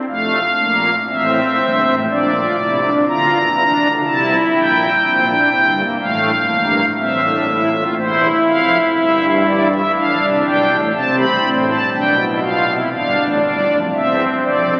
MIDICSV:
0, 0, Header, 1, 2, 480
1, 0, Start_track
1, 0, Key_signature, -1, "major"
1, 0, Tempo, 1003344
1, 41, Time_signature, 4, 2, 24, 8
1, 1000, Tempo, 980392
1, 4360, Tempo, 995025
1, 7180, End_track
2, 0, Start_track
2, 0, Title_t, "Pipe organ"
2, 0, Program_c, 0, 19
2, 42, Note_on_c, 0, 41, 72
2, 43, Note_on_c, 0, 29, 80
2, 43, Note_on_c, 0, 57, 59
2, 43, Note_on_c, 0, 77, 64
2, 192, Note_off_c, 0, 29, 0
2, 192, Note_off_c, 0, 41, 0
2, 192, Note_off_c, 0, 57, 0
2, 281, Note_on_c, 0, 58, 60
2, 282, Note_on_c, 0, 34, 78
2, 284, Note_on_c, 0, 46, 77
2, 431, Note_off_c, 0, 34, 0
2, 431, Note_off_c, 0, 58, 0
2, 433, Note_off_c, 0, 46, 0
2, 457, Note_off_c, 0, 77, 0
2, 519, Note_on_c, 0, 33, 77
2, 520, Note_on_c, 0, 76, 63
2, 521, Note_on_c, 0, 45, 73
2, 521, Note_on_c, 0, 60, 68
2, 669, Note_off_c, 0, 33, 0
2, 670, Note_off_c, 0, 45, 0
2, 763, Note_on_c, 0, 31, 76
2, 764, Note_on_c, 0, 43, 68
2, 865, Note_off_c, 0, 31, 0
2, 866, Note_off_c, 0, 43, 0
2, 885, Note_on_c, 0, 33, 85
2, 885, Note_on_c, 0, 45, 80
2, 932, Note_off_c, 0, 60, 0
2, 932, Note_off_c, 0, 76, 0
2, 985, Note_off_c, 0, 33, 0
2, 985, Note_off_c, 0, 45, 0
2, 1004, Note_on_c, 0, 34, 88
2, 1005, Note_on_c, 0, 46, 89
2, 1005, Note_on_c, 0, 62, 70
2, 1005, Note_on_c, 0, 74, 65
2, 1107, Note_off_c, 0, 62, 0
2, 1127, Note_on_c, 0, 65, 60
2, 1152, Note_off_c, 0, 34, 0
2, 1153, Note_off_c, 0, 46, 0
2, 1228, Note_off_c, 0, 65, 0
2, 1243, Note_on_c, 0, 36, 71
2, 1246, Note_on_c, 0, 48, 70
2, 1246, Note_on_c, 0, 64, 62
2, 1347, Note_off_c, 0, 64, 0
2, 1365, Note_on_c, 0, 62, 64
2, 1392, Note_off_c, 0, 36, 0
2, 1393, Note_off_c, 0, 48, 0
2, 1417, Note_off_c, 0, 74, 0
2, 1467, Note_off_c, 0, 62, 0
2, 1482, Note_on_c, 0, 65, 65
2, 1483, Note_on_c, 0, 38, 83
2, 1483, Note_on_c, 0, 50, 77
2, 1483, Note_on_c, 0, 82, 67
2, 1586, Note_off_c, 0, 38, 0
2, 1586, Note_off_c, 0, 50, 0
2, 1605, Note_on_c, 0, 40, 78
2, 1605, Note_on_c, 0, 52, 76
2, 1631, Note_off_c, 0, 65, 0
2, 1724, Note_on_c, 0, 62, 57
2, 1753, Note_off_c, 0, 52, 0
2, 1754, Note_off_c, 0, 40, 0
2, 1842, Note_on_c, 0, 38, 76
2, 1843, Note_on_c, 0, 50, 74
2, 1873, Note_off_c, 0, 62, 0
2, 1897, Note_off_c, 0, 82, 0
2, 1946, Note_off_c, 0, 38, 0
2, 1946, Note_off_c, 0, 50, 0
2, 1960, Note_on_c, 0, 36, 83
2, 1960, Note_on_c, 0, 48, 81
2, 1960, Note_on_c, 0, 64, 65
2, 1962, Note_on_c, 0, 81, 75
2, 2110, Note_off_c, 0, 36, 0
2, 2110, Note_off_c, 0, 48, 0
2, 2112, Note_off_c, 0, 81, 0
2, 2203, Note_on_c, 0, 34, 85
2, 2203, Note_on_c, 0, 46, 82
2, 2203, Note_on_c, 0, 79, 64
2, 2351, Note_off_c, 0, 46, 0
2, 2352, Note_off_c, 0, 34, 0
2, 2374, Note_off_c, 0, 64, 0
2, 2440, Note_on_c, 0, 34, 81
2, 2440, Note_on_c, 0, 60, 63
2, 2442, Note_on_c, 0, 46, 81
2, 2544, Note_off_c, 0, 60, 0
2, 2564, Note_on_c, 0, 62, 67
2, 2588, Note_off_c, 0, 34, 0
2, 2590, Note_off_c, 0, 46, 0
2, 2665, Note_off_c, 0, 62, 0
2, 2678, Note_on_c, 0, 60, 67
2, 2679, Note_on_c, 0, 31, 76
2, 2680, Note_on_c, 0, 43, 82
2, 2782, Note_off_c, 0, 60, 0
2, 2795, Note_on_c, 0, 58, 71
2, 2818, Note_off_c, 0, 79, 0
2, 2827, Note_off_c, 0, 31, 0
2, 2828, Note_off_c, 0, 43, 0
2, 2900, Note_off_c, 0, 58, 0
2, 2916, Note_on_c, 0, 33, 92
2, 2917, Note_on_c, 0, 45, 84
2, 2917, Note_on_c, 0, 77, 80
2, 2918, Note_on_c, 0, 57, 70
2, 3066, Note_off_c, 0, 33, 0
2, 3067, Note_off_c, 0, 45, 0
2, 3067, Note_off_c, 0, 57, 0
2, 3155, Note_on_c, 0, 43, 75
2, 3156, Note_on_c, 0, 58, 68
2, 3157, Note_on_c, 0, 31, 80
2, 3306, Note_off_c, 0, 43, 0
2, 3306, Note_off_c, 0, 58, 0
2, 3308, Note_off_c, 0, 31, 0
2, 3332, Note_off_c, 0, 77, 0
2, 3399, Note_on_c, 0, 33, 86
2, 3399, Note_on_c, 0, 60, 71
2, 3399, Note_on_c, 0, 76, 68
2, 3400, Note_on_c, 0, 45, 78
2, 3503, Note_off_c, 0, 60, 0
2, 3521, Note_on_c, 0, 62, 71
2, 3624, Note_off_c, 0, 62, 0
2, 3636, Note_on_c, 0, 64, 62
2, 3741, Note_off_c, 0, 64, 0
2, 3761, Note_on_c, 0, 65, 63
2, 3813, Note_off_c, 0, 33, 0
2, 3813, Note_off_c, 0, 45, 0
2, 3813, Note_off_c, 0, 76, 0
2, 3864, Note_off_c, 0, 65, 0
2, 3879, Note_on_c, 0, 64, 77
2, 3879, Note_on_c, 0, 72, 89
2, 3880, Note_on_c, 0, 28, 67
2, 3880, Note_on_c, 0, 40, 81
2, 4029, Note_off_c, 0, 40, 0
2, 4029, Note_off_c, 0, 72, 0
2, 4030, Note_off_c, 0, 28, 0
2, 4121, Note_on_c, 0, 41, 77
2, 4122, Note_on_c, 0, 29, 78
2, 4124, Note_on_c, 0, 77, 90
2, 4271, Note_off_c, 0, 41, 0
2, 4272, Note_off_c, 0, 29, 0
2, 4273, Note_off_c, 0, 77, 0
2, 4360, Note_on_c, 0, 43, 74
2, 4361, Note_on_c, 0, 31, 67
2, 4361, Note_on_c, 0, 76, 83
2, 4510, Note_off_c, 0, 76, 0
2, 4602, Note_on_c, 0, 74, 86
2, 4706, Note_off_c, 0, 74, 0
2, 4709, Note_off_c, 0, 64, 0
2, 4720, Note_on_c, 0, 76, 92
2, 4774, Note_off_c, 0, 43, 0
2, 4775, Note_off_c, 0, 31, 0
2, 4825, Note_off_c, 0, 76, 0
2, 4840, Note_on_c, 0, 62, 75
2, 4841, Note_on_c, 0, 33, 70
2, 4841, Note_on_c, 0, 45, 83
2, 4841, Note_on_c, 0, 77, 100
2, 4945, Note_off_c, 0, 33, 0
2, 4945, Note_off_c, 0, 45, 0
2, 4961, Note_on_c, 0, 48, 66
2, 4963, Note_on_c, 0, 36, 63
2, 4990, Note_off_c, 0, 77, 0
2, 5065, Note_off_c, 0, 48, 0
2, 5066, Note_off_c, 0, 36, 0
2, 5083, Note_on_c, 0, 35, 71
2, 5084, Note_on_c, 0, 47, 68
2, 5085, Note_on_c, 0, 79, 82
2, 5186, Note_off_c, 0, 35, 0
2, 5186, Note_off_c, 0, 47, 0
2, 5202, Note_on_c, 0, 45, 69
2, 5204, Note_on_c, 0, 33, 74
2, 5232, Note_off_c, 0, 79, 0
2, 5252, Note_off_c, 0, 62, 0
2, 5304, Note_off_c, 0, 45, 0
2, 5305, Note_off_c, 0, 33, 0
2, 5320, Note_on_c, 0, 36, 75
2, 5320, Note_on_c, 0, 48, 69
2, 5320, Note_on_c, 0, 60, 71
2, 5321, Note_on_c, 0, 81, 82
2, 5423, Note_off_c, 0, 81, 0
2, 5437, Note_on_c, 0, 83, 89
2, 5468, Note_off_c, 0, 36, 0
2, 5468, Note_off_c, 0, 48, 0
2, 5554, Note_on_c, 0, 33, 68
2, 5556, Note_on_c, 0, 45, 70
2, 5586, Note_off_c, 0, 83, 0
2, 5678, Note_on_c, 0, 81, 76
2, 5703, Note_off_c, 0, 33, 0
2, 5705, Note_off_c, 0, 45, 0
2, 5730, Note_off_c, 0, 60, 0
2, 5780, Note_off_c, 0, 81, 0
2, 5799, Note_on_c, 0, 79, 90
2, 5801, Note_on_c, 0, 35, 77
2, 5801, Note_on_c, 0, 47, 76
2, 5801, Note_on_c, 0, 62, 73
2, 5902, Note_off_c, 0, 62, 0
2, 5920, Note_on_c, 0, 64, 70
2, 5946, Note_off_c, 0, 79, 0
2, 6021, Note_off_c, 0, 64, 0
2, 6035, Note_on_c, 0, 77, 90
2, 6037, Note_on_c, 0, 65, 74
2, 6139, Note_off_c, 0, 65, 0
2, 6154, Note_on_c, 0, 64, 71
2, 6184, Note_off_c, 0, 77, 0
2, 6210, Note_off_c, 0, 47, 0
2, 6211, Note_off_c, 0, 35, 0
2, 6258, Note_off_c, 0, 64, 0
2, 6280, Note_on_c, 0, 43, 68
2, 6281, Note_on_c, 0, 62, 76
2, 6281, Note_on_c, 0, 77, 88
2, 6282, Note_on_c, 0, 31, 73
2, 6381, Note_off_c, 0, 43, 0
2, 6382, Note_off_c, 0, 31, 0
2, 6400, Note_on_c, 0, 33, 71
2, 6400, Note_on_c, 0, 45, 72
2, 6428, Note_off_c, 0, 77, 0
2, 6501, Note_off_c, 0, 45, 0
2, 6502, Note_off_c, 0, 33, 0
2, 6516, Note_on_c, 0, 31, 66
2, 6516, Note_on_c, 0, 74, 86
2, 6517, Note_on_c, 0, 43, 65
2, 6620, Note_off_c, 0, 31, 0
2, 6620, Note_off_c, 0, 43, 0
2, 6641, Note_on_c, 0, 41, 71
2, 6642, Note_on_c, 0, 29, 72
2, 6666, Note_off_c, 0, 74, 0
2, 6693, Note_off_c, 0, 62, 0
2, 6743, Note_off_c, 0, 29, 0
2, 6743, Note_off_c, 0, 41, 0
2, 6761, Note_on_c, 0, 28, 67
2, 6761, Note_on_c, 0, 60, 72
2, 6762, Note_on_c, 0, 40, 68
2, 6763, Note_on_c, 0, 76, 80
2, 6910, Note_off_c, 0, 28, 0
2, 6911, Note_off_c, 0, 40, 0
2, 6911, Note_off_c, 0, 76, 0
2, 7001, Note_on_c, 0, 41, 59
2, 7002, Note_on_c, 0, 29, 60
2, 7002, Note_on_c, 0, 74, 77
2, 7150, Note_off_c, 0, 41, 0
2, 7151, Note_off_c, 0, 29, 0
2, 7151, Note_off_c, 0, 74, 0
2, 7176, Note_off_c, 0, 60, 0
2, 7180, End_track
0, 0, End_of_file